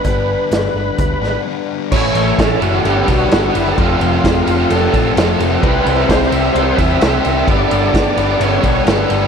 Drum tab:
CC |----------------|x---------------|----------------|----------------|
RD |----------------|--x-x-x-x-x-x-x-|x-x-x-x-x-x-x-x-|x-x-x-x-x-x-x-x-|
HH |x---x---x-------|----------------|----------------|----------------|
SD |----o-----o-----|----o-------o---|----o-------o---|----oo------o---|
BD |o-------o-------|o---o-----o-----|o---o-----o-----|o---o-----o-----|

CC |----------------|
RD |x-x-x-x-x-x-x-x-|
HH |----------------|
SD |----o-------o---|
BD |o---o-----o-----|